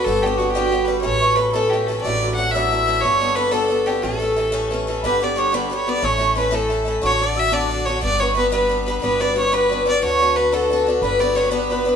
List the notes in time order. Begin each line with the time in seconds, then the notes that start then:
Already playing: G4 B4 C#5
0.04 G1 G2 D3 G3 B3 A4 A5
0.08 D4 G4
0.22 G3 B3 G4
0.26 D4 G4
0.37 G3 B3 D4 F#4 F#5
0.42 G4
0.52 G2 D3 G3 G4 G5
0.56 B3 D4 G4
0.71 G3 B3 D4 G4
0.85 G3 B3 B4
0.89 D4 G4 B4
1.01 A2 E3 A3 C#4 A4 C#5 C#6
1.06 A1
1.22 E3 A3 C#4 A4 C#5
1.35 E3 A3 C#4 A4 B4
1.40 B5
1.52 A2 E3 A3 C#4 A4 A5
1.69 E3 G4 G5
1.74 A3 C#4 G4 A4
1.86 E3 A3 C#4 A4 A5
1.91 A4
2.01 A1 A2 F#3 D5 D6
2.05 A3 D4 E4 D5
2.17 D5
2.23 F#3 A3 D4 E4 D5
2.35 F#3 F#5
2.39 A3 D4 E4 F#6
2.51 E5 E6
2.55 A2 F#3 A3 D4 E4
2.71 F#3 A3 D4 E4
2.86 F#3 A3 D4 E4
3.01 G3 B3 C#5 C#6
3.05 G1 D4 A4
3.21 G3 B3 D4 A4
3.35 G3 B3 D4 A4 B4 B5
3.51 G3 B3 D4 A4 A5
3.68 G3 B3 D4 A4
3.86 G3 B3 D4 G4 A4
4.02 A1 A2 E3 A3 C#4 A4 A5
4.20 E3 A3 C#4 A4
4.36 E3 A3 C#4 A4
4.52 A2 E3 A3 C#4 A4
4.71 E3 A3 C#4 A4
4.87 E3 A3 C#4 A4
5.02 G1 G2 D3 G3 B3 D4 B4 B5
5.06 G4
5.20 G3 B3 D4 G4 D5 D6
5.36 G3 B3 D4 G4 C#5 C#6
5.52 G2 D3 G3 B3 D4 G4 B4 B5
5.70 G3 B3 D4 G4
5.74 C#5
5.87 G3 B3 D4 G4 D5
6.01 A1 A2 A3 C#4 E4 A4 C#5 E6
6.07 C#6
6.18 A3 C#4 E4 A4
6.36 A3 C#4 E4 A4 B4 B5
6.51 A2 A3 C#4 E4 A4 A5
6.70 A3 C#4 E4 A4
6.85 A3 C#4 E4 A4
7.01 A1 A2 D3 D4 F#4 A4 C#5 C#6
7.19 D3 D4 F#4 A4 D5 D6
7.34 D3 D4 F#4 A4 E6
7.39 E5
7.51 A2 D3 D4 F#4 A4 D5 D6
7.70 D3 D4 F#4 A4
7.85 D3 D4 F#4 A4 C#5 C#6
8.02 G1 G3 B3 D4 B4 D5 D6
8.19 G3 B3 D4 B4 C#5 C#6
8.35 G3 B3 D4 B4
8.39 B5
8.52 G3 B3 D4 B4 B5
8.69 G3 B3 D4 B4
8.85 G3 B3 D4 B4 B5
8.90 B4
9.02 G1 G3 B3 D4 B4 B5
9.20 G3 B3 D4 B4 D5 D6
9.35 G3 B3 D4 B4 C#5 C#6
9.52 G3 B3 D4 B4 B5
9.69 G3 B3 D4 B4 C#5
9.85 G3 B3 D4 B4 D5 D6
10.02 D2 D3 D4 F#4 A4 C#5 C#6
10.19 D3 D4 F#4 A4
10.36 D3 D4 F#4 A4 B4 B5
10.52 D3 D4 F#4 A4 A5
10.70 D3 D4 F#4 A4
10.87 D3 D4 F#4 A4
11.02 G1 G3 B3 D4 B4 B5
11.19 G3 B3 D4 B4 D5
11.35 G3 B3 D4 B4 C#5 C#6
11.49 G3 B3 D4 B4 B5
11.69 G3 B3 D4 B4
11.85 G3 B3 D4 B4